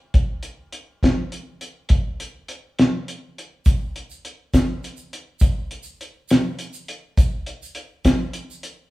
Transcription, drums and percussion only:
0, 0, Header, 1, 2, 480
1, 0, Start_track
1, 0, Tempo, 584226
1, 125, Time_signature, 6, 3, 24, 8
1, 7314, End_track
2, 0, Start_track
2, 0, Title_t, "Drums"
2, 115, Note_on_c, 9, 42, 79
2, 117, Note_on_c, 9, 36, 100
2, 197, Note_off_c, 9, 42, 0
2, 199, Note_off_c, 9, 36, 0
2, 350, Note_on_c, 9, 42, 65
2, 432, Note_off_c, 9, 42, 0
2, 595, Note_on_c, 9, 42, 66
2, 678, Note_off_c, 9, 42, 0
2, 844, Note_on_c, 9, 36, 63
2, 848, Note_on_c, 9, 42, 78
2, 855, Note_on_c, 9, 38, 98
2, 926, Note_off_c, 9, 36, 0
2, 930, Note_off_c, 9, 42, 0
2, 937, Note_off_c, 9, 38, 0
2, 1085, Note_on_c, 9, 42, 65
2, 1167, Note_off_c, 9, 42, 0
2, 1323, Note_on_c, 9, 42, 68
2, 1405, Note_off_c, 9, 42, 0
2, 1552, Note_on_c, 9, 42, 88
2, 1563, Note_on_c, 9, 36, 101
2, 1634, Note_off_c, 9, 42, 0
2, 1645, Note_off_c, 9, 36, 0
2, 1808, Note_on_c, 9, 42, 69
2, 1890, Note_off_c, 9, 42, 0
2, 2041, Note_on_c, 9, 42, 71
2, 2123, Note_off_c, 9, 42, 0
2, 2289, Note_on_c, 9, 42, 82
2, 2296, Note_on_c, 9, 38, 88
2, 2372, Note_off_c, 9, 42, 0
2, 2378, Note_off_c, 9, 38, 0
2, 2532, Note_on_c, 9, 42, 69
2, 2614, Note_off_c, 9, 42, 0
2, 2780, Note_on_c, 9, 42, 69
2, 2862, Note_off_c, 9, 42, 0
2, 3001, Note_on_c, 9, 82, 88
2, 3006, Note_on_c, 9, 42, 94
2, 3007, Note_on_c, 9, 36, 104
2, 3083, Note_off_c, 9, 82, 0
2, 3088, Note_off_c, 9, 42, 0
2, 3089, Note_off_c, 9, 36, 0
2, 3251, Note_on_c, 9, 42, 64
2, 3333, Note_off_c, 9, 42, 0
2, 3370, Note_on_c, 9, 82, 65
2, 3452, Note_off_c, 9, 82, 0
2, 3490, Note_on_c, 9, 42, 66
2, 3573, Note_off_c, 9, 42, 0
2, 3727, Note_on_c, 9, 36, 68
2, 3727, Note_on_c, 9, 42, 78
2, 3732, Note_on_c, 9, 82, 88
2, 3733, Note_on_c, 9, 38, 87
2, 3809, Note_off_c, 9, 36, 0
2, 3809, Note_off_c, 9, 42, 0
2, 3814, Note_off_c, 9, 82, 0
2, 3816, Note_off_c, 9, 38, 0
2, 3970, Note_on_c, 9, 82, 29
2, 3979, Note_on_c, 9, 42, 59
2, 4053, Note_off_c, 9, 82, 0
2, 4061, Note_off_c, 9, 42, 0
2, 4082, Note_on_c, 9, 82, 70
2, 4164, Note_off_c, 9, 82, 0
2, 4216, Note_on_c, 9, 42, 65
2, 4298, Note_off_c, 9, 42, 0
2, 4433, Note_on_c, 9, 82, 96
2, 4448, Note_on_c, 9, 36, 106
2, 4449, Note_on_c, 9, 42, 87
2, 4515, Note_off_c, 9, 82, 0
2, 4530, Note_off_c, 9, 36, 0
2, 4531, Note_off_c, 9, 42, 0
2, 4690, Note_on_c, 9, 42, 58
2, 4772, Note_off_c, 9, 42, 0
2, 4789, Note_on_c, 9, 82, 68
2, 4871, Note_off_c, 9, 82, 0
2, 4937, Note_on_c, 9, 42, 66
2, 5019, Note_off_c, 9, 42, 0
2, 5165, Note_on_c, 9, 82, 89
2, 5181, Note_on_c, 9, 42, 80
2, 5187, Note_on_c, 9, 38, 88
2, 5247, Note_off_c, 9, 82, 0
2, 5263, Note_off_c, 9, 42, 0
2, 5269, Note_off_c, 9, 38, 0
2, 5411, Note_on_c, 9, 42, 68
2, 5415, Note_on_c, 9, 82, 26
2, 5493, Note_off_c, 9, 42, 0
2, 5497, Note_off_c, 9, 82, 0
2, 5531, Note_on_c, 9, 82, 64
2, 5613, Note_off_c, 9, 82, 0
2, 5656, Note_on_c, 9, 42, 75
2, 5738, Note_off_c, 9, 42, 0
2, 5895, Note_on_c, 9, 36, 109
2, 5895, Note_on_c, 9, 42, 98
2, 5900, Note_on_c, 9, 82, 86
2, 5977, Note_off_c, 9, 36, 0
2, 5977, Note_off_c, 9, 42, 0
2, 5983, Note_off_c, 9, 82, 0
2, 6133, Note_on_c, 9, 42, 73
2, 6215, Note_off_c, 9, 42, 0
2, 6265, Note_on_c, 9, 82, 72
2, 6347, Note_off_c, 9, 82, 0
2, 6366, Note_on_c, 9, 42, 74
2, 6448, Note_off_c, 9, 42, 0
2, 6611, Note_on_c, 9, 42, 90
2, 6613, Note_on_c, 9, 36, 66
2, 6615, Note_on_c, 9, 82, 90
2, 6618, Note_on_c, 9, 38, 102
2, 6693, Note_off_c, 9, 42, 0
2, 6695, Note_off_c, 9, 36, 0
2, 6697, Note_off_c, 9, 82, 0
2, 6700, Note_off_c, 9, 38, 0
2, 6848, Note_on_c, 9, 42, 68
2, 6859, Note_on_c, 9, 82, 26
2, 6930, Note_off_c, 9, 42, 0
2, 6941, Note_off_c, 9, 82, 0
2, 6988, Note_on_c, 9, 82, 65
2, 7070, Note_off_c, 9, 82, 0
2, 7092, Note_on_c, 9, 42, 68
2, 7174, Note_off_c, 9, 42, 0
2, 7314, End_track
0, 0, End_of_file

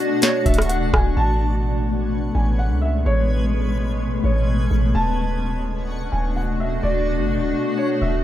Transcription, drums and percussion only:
0, 0, Header, 1, 2, 480
1, 0, Start_track
1, 0, Key_signature, 3, "major"
1, 0, Tempo, 472441
1, 1186, Time_signature, 4, 2, 24, 8
1, 8371, End_track
2, 0, Start_track
2, 0, Title_t, "Drums"
2, 224, Note_on_c, 9, 42, 88
2, 234, Note_on_c, 9, 38, 112
2, 326, Note_off_c, 9, 42, 0
2, 335, Note_off_c, 9, 38, 0
2, 466, Note_on_c, 9, 36, 99
2, 466, Note_on_c, 9, 42, 63
2, 547, Note_off_c, 9, 42, 0
2, 547, Note_on_c, 9, 42, 64
2, 568, Note_off_c, 9, 36, 0
2, 594, Note_on_c, 9, 37, 100
2, 627, Note_off_c, 9, 42, 0
2, 627, Note_on_c, 9, 42, 63
2, 695, Note_off_c, 9, 37, 0
2, 706, Note_off_c, 9, 42, 0
2, 706, Note_on_c, 9, 42, 71
2, 808, Note_off_c, 9, 42, 0
2, 949, Note_on_c, 9, 36, 93
2, 951, Note_on_c, 9, 37, 103
2, 1051, Note_off_c, 9, 36, 0
2, 1053, Note_off_c, 9, 37, 0
2, 8371, End_track
0, 0, End_of_file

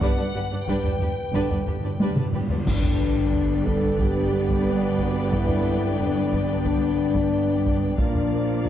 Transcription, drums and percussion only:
0, 0, Header, 1, 3, 480
1, 0, Start_track
1, 0, Key_signature, 1, "major"
1, 0, Tempo, 664452
1, 9, Time_signature, 4, 2, 24, 8
1, 6279, End_track
2, 0, Start_track
2, 0, Title_t, "Taiko and cinematic ensemble drums"
2, 6, Note_on_c, 9, 41, 87
2, 78, Note_off_c, 9, 41, 0
2, 489, Note_on_c, 9, 41, 69
2, 561, Note_off_c, 9, 41, 0
2, 605, Note_on_c, 9, 43, 46
2, 678, Note_off_c, 9, 43, 0
2, 727, Note_on_c, 9, 43, 54
2, 799, Note_off_c, 9, 43, 0
2, 962, Note_on_c, 9, 41, 73
2, 1035, Note_off_c, 9, 41, 0
2, 1084, Note_on_c, 9, 43, 45
2, 1156, Note_off_c, 9, 43, 0
2, 1208, Note_on_c, 9, 43, 52
2, 1281, Note_off_c, 9, 43, 0
2, 1444, Note_on_c, 9, 48, 81
2, 1517, Note_off_c, 9, 48, 0
2, 1566, Note_on_c, 9, 47, 79
2, 1638, Note_off_c, 9, 47, 0
2, 1682, Note_on_c, 9, 45, 80
2, 1754, Note_off_c, 9, 45, 0
2, 1803, Note_on_c, 9, 43, 86
2, 1875, Note_off_c, 9, 43, 0
2, 1927, Note_on_c, 9, 41, 90
2, 1999, Note_off_c, 9, 41, 0
2, 2044, Note_on_c, 9, 43, 46
2, 2116, Note_off_c, 9, 43, 0
2, 2403, Note_on_c, 9, 43, 58
2, 2475, Note_off_c, 9, 43, 0
2, 2643, Note_on_c, 9, 41, 77
2, 2716, Note_off_c, 9, 41, 0
2, 2884, Note_on_c, 9, 41, 76
2, 2956, Note_off_c, 9, 41, 0
2, 3246, Note_on_c, 9, 41, 74
2, 3318, Note_off_c, 9, 41, 0
2, 3604, Note_on_c, 9, 41, 69
2, 3677, Note_off_c, 9, 41, 0
2, 3842, Note_on_c, 9, 41, 85
2, 3915, Note_off_c, 9, 41, 0
2, 3965, Note_on_c, 9, 43, 46
2, 4037, Note_off_c, 9, 43, 0
2, 4325, Note_on_c, 9, 43, 56
2, 4398, Note_off_c, 9, 43, 0
2, 4570, Note_on_c, 9, 41, 74
2, 4642, Note_off_c, 9, 41, 0
2, 4809, Note_on_c, 9, 41, 77
2, 4881, Note_off_c, 9, 41, 0
2, 5165, Note_on_c, 9, 41, 78
2, 5237, Note_off_c, 9, 41, 0
2, 5530, Note_on_c, 9, 41, 72
2, 5602, Note_off_c, 9, 41, 0
2, 5767, Note_on_c, 9, 41, 81
2, 5839, Note_off_c, 9, 41, 0
2, 5889, Note_on_c, 9, 43, 46
2, 5961, Note_off_c, 9, 43, 0
2, 6247, Note_on_c, 9, 43, 54
2, 6279, Note_off_c, 9, 43, 0
2, 6279, End_track
3, 0, Start_track
3, 0, Title_t, "Drums"
3, 1931, Note_on_c, 9, 35, 68
3, 1931, Note_on_c, 9, 49, 67
3, 2003, Note_off_c, 9, 35, 0
3, 2003, Note_off_c, 9, 49, 0
3, 6279, End_track
0, 0, End_of_file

